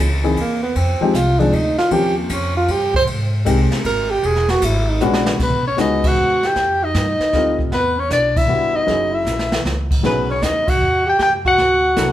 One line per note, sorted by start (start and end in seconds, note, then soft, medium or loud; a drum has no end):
0.00 0.36 C#2 loud
0.24 0.36 E3 medium
0.24 0.36 A#3 medium
0.24 0.36 C4 medium
0.24 0.36 D#4 medium
0.24 0.36 G#4 medium
0.24 ride soft
0.36 0.75 D#2 medium
0.36 0.62 A#3 medium
0.36 kick soft
0.36 ride medium
0.62 0.78 B3 medium
0.75 1.00 F2 medium
0.75 1.17 C4 medium
0.75 kick soft
0.75 ride medium
1.01 1.13 F3 medium
1.01 1.13 G#3 medium
1.01 1.14 C4 medium
1.01 1.14 D#4 medium
1.01 1.14 G4 medium
1.01 muted upright bass stroke soft
1.14 1.52 C2 medium
1.14 1.41 F4 medium
1.14 kick soft
1.14 hi-hat pedal medium
1.14 ride medium
1.39 1.52 F3 medium
1.39 1.52 G#3 medium
1.39 1.52 C4 medium
1.39 1.55 D4 medium
1.39 1.52 D#4 medium
1.39 1.52 G#4 medium
1.39 ride medium
1.52 1.77 D2 medium
1.52 1.78 D#4 medium
1.52 kick soft
1.52 ride medium
1.78 1.94 F4 loud
1.78 muted upright bass stroke soft
1.78 snare medium
1.91 2.29 D#2 medium
1.91 3.00 F3 medium
1.91 3.00 A#3 medium
1.91 3.00 C4 medium
1.91 3.00 C#4 medium
1.91 2.18 G4 loud
1.91 3.00 G4 medium
1.91 kick soft
1.91 ride medium
2.18 2.34 A#3 medium
2.29 2.68 F2 loud
2.29 2.56 C#4 medium
2.29 kick soft
2.29 hi-hat pedal medium
2.29 ride medium
2.57 2.73 F4 loud
2.68 3.06 G2 medium
2.68 2.95 G4 loud
2.68 kick soft
2.68 ride medium
2.94 3.03 C5 loud
2.94 kick medium
3.07 3.45 G#2 medium
3.07 kick soft
3.07 ride medium
3.45 3.70 C2 loud
3.45 4.05 G#3 medium
3.45 4.05 A#3 medium
3.45 4.05 C4 medium
3.45 4.06 D#4 medium
3.45 4.05 G4 medium
3.45 kick soft
3.45 hi-hat pedal medium
3.45 ride medium
3.72 snare medium
3.72 ride medium
3.84 4.22 G#1 medium
3.84 4.12 A#4 loud
3.84 kick soft
3.84 ride medium
4.11 4.28 G4 loud
4.23 4.61 E1 medium
4.23 4.52 G#4 loud
4.23 kick soft
4.23 ride medium
4.36 snare soft
4.48 4.66 F#4 loud
4.48 snare soft
4.48 ride medium
4.62 5.00 G#1 loud
4.62 4.91 E4 medium
4.62 kick soft
4.62 hi-hat pedal medium
4.62 ride medium
4.89 5.06 D#4 medium
5.00 5.39 A#1 medium
5.00 5.40 G#3 medium
5.00 5.40 B3 medium
5.00 5.40 C#4 medium
5.00 5.40 D4 medium
5.00 5.40 F#4 medium
5.00 hi-hat pedal medium
5.05 5.35 D4 medium
5.13 snare medium
5.26 snare medium
5.39 5.77 B1 medium
5.39 5.65 B3 medium
5.39 5.65 B4 medium
5.39 brush sweep soft
5.39 kick medium
5.39 snare soft
5.39 crash medium
5.67 5.78 C#4 medium
5.67 5.78 C#5 medium
5.77 6.16 C#2 medium
5.77 6.37 G#3 medium
5.77 6.37 B3 medium
5.77 6.37 C#4 medium
5.77 6.37 D#4 medium
5.77 6.07 D#4 medium
5.77 6.38 F#4 medium
5.77 6.09 D#5 medium
5.77 kick soft
5.77 snare medium
5.77 hi-hat pedal medium
6.04 6.46 F#4 medium
6.04 6.48 F#5 medium
6.04 kick medium
6.04 crash medium
6.17 6.55 D#2 medium
6.43 6.85 G4 loud
6.43 6.86 G5 loud
6.43 snare medium
6.56 6.93 F2 medium
6.56 brush sweep soft
6.56 kick soft
6.56 snare soft
6.83 7.60 D#4 medium
6.83 7.60 D#5 medium
6.94 7.18 G2 medium
6.94 kick soft
6.94 snare medium
6.94 hi-hat pedal medium
7.20 muted upright bass stroke soft
7.20 snare soft
7.33 7.70 D2 medium
7.33 7.72 G3 medium
7.33 7.72 A3 medium
7.33 7.72 C4 medium
7.33 7.73 D#4 medium
7.33 7.73 F4 medium
7.33 kick soft
7.33 snare soft
7.59 kick medium
7.72 8.09 E2 medium
7.72 8.00 B3 medium
7.72 8.01 B4 medium
7.72 brush sweep medium
7.72 kick soft
7.72 snare soft
7.98 8.10 C#4 medium
7.98 8.11 C#5 medium
8.10 8.48 B1 medium
8.10 8.39 D4 medium
8.10 8.39 D5 medium
8.10 kick soft
8.10 snare medium
8.10 hi-hat pedal medium
8.36 8.76 E4 medium
8.36 8.77 E5 loud
8.36 kick medium
8.36 crash medium
8.48 8.86 G1 medium
8.48 8.87 G3 medium
8.48 8.87 B3 medium
8.48 8.87 D4 medium
8.48 8.86 E4 medium
8.48 8.87 F#4 medium
8.74 9.14 D#4 medium
8.74 9.16 D#5 medium
8.87 9.24 F#1 medium
8.87 9.95 F#3 medium
8.87 9.95 A#3 medium
8.87 9.95 C#4 medium
8.87 9.95 E4 medium
8.87 9.96 G#4 medium
8.87 brush sweep soft
8.87 kick soft
8.87 snare soft
9.13 9.59 E4 medium
9.13 9.60 E5 medium
9.25 9.63 A#1 medium
9.25 snare soft
9.25 hi-hat pedal medium
9.39 snare medium
9.52 snare medium
9.65 10.02 C#2 medium
9.65 snare medium
9.91 kick medium
9.91 crash medium
10.03 10.41 B1 medium
10.03 10.62 F#3 medium
10.03 10.27 B3 medium
10.03 10.62 B3 medium
10.03 10.63 C#4 medium
10.03 10.63 D#4 medium
10.03 10.63 G#4 medium
10.03 10.29 B4 medium
10.03 brush sweep soft
10.03 snare soft
10.29 10.44 C#4 medium
10.29 10.44 C#5 medium
10.42 10.79 D#2 medium
10.42 10.69 D#4 medium
10.42 10.71 D#5 medium
10.42 kick soft
10.42 snare medium
10.42 hi-hat pedal medium
10.68 11.06 F#4 medium
10.68 11.07 F#5 loud
10.68 kick medium
10.68 crash medium
10.81 11.18 E2 medium
11.06 11.18 G4 medium
11.06 11.20 G5 medium
11.19 11.56 F#2 medium
11.19 11.30 G4 medium
11.19 11.33 G5 medium
11.19 brush sweep soft
11.19 kick soft
11.19 snare soft
11.45 12.12 F#4 medium
11.45 12.12 F#5 loud
11.45 kick medium
11.58 11.95 D2 medium
11.58 kick soft
11.58 snare soft
11.96 12.12 C2 medium
11.96 12.12 F#3 medium
11.96 12.12 A#3 medium
11.96 12.12 D4 medium
11.96 12.12 E4 medium
11.96 12.12 A4 medium
11.96 kick soft
11.96 snare medium
11.96 hi-hat pedal medium